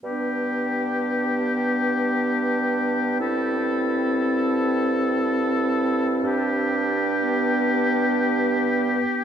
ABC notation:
X:1
M:3/4
L:1/16
Q:1/4=58
K:G
V:1 name="Oboe"
G12 | A12 | G12 |]
V:2 name="Clarinet"
D12 | E12 | D8- D3 z |]
V:3 name="French horn"
B,12 | C12- | C3 z B,8 |]
V:4 name="Bassoon" clef=bass
G,,12- | G,,12 | G,,8- G,,3 z |]